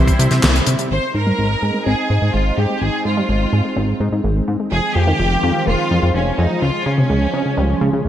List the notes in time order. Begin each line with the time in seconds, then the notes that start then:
Already playing: C2 G3 C4 E4 C5 C6
0.07 kick, closed hi-hat
0.19 C2 C3, closed hi-hat
0.31 C3, snare, closed hi-hat
0.42 C2 C3, snare, clap, closed hi-hat
0.56 closed hi-hat
0.67 C3, closed hi-hat
0.79 C3, closed hi-hat
0.91 G#1 G#3 C4 D#4 C5
1.15 G#2 G#4 A#4
1.27 G3
1.39 G#1 G#3
1.62 G#2 G#4
1.74 G#3
1.86 G#1 C4 G#4
2.10 G#2
2.22 G#2 G#3
2.34 G#1 G#3 F4
2.57 G#2 G#3 G4
2.69 G#3
2.81 G#1 G#3 G#4
3.05 G#2 F4 G#4
3.17 G3
3.29 G#1 G#3
3.53 G#2 G#4
3.65 G#3
3.76 G#1 C4
4.00 G#2
4.12 G#2 G#3
4.24 G#1 G#3
4.48 G#2 G#3
4.60 G#3
4.72 F1 D#3 F3 C4 F4 G#4
4.95 F2 F4 G4
5.07 D#3
5.19 F1 F3
5.43 F2 F4
5.55 F3
5.67 F1 A#3 F4
5.91 F2
6.03 F2 F3
6.14 F1 F3 C#4
6.38 F2 F3 D#4
6.50 F3
6.62 C#2 C#3 F3 C#4 F4
6.86 C#3 C#4
6.98 C3
7.10 C#2 C#3
7.34 C#3 C#4
7.46 C#3
7.57 C#2 G3
7.81 C#2 C#3
7.93 C#3
8.05 C#2 C#3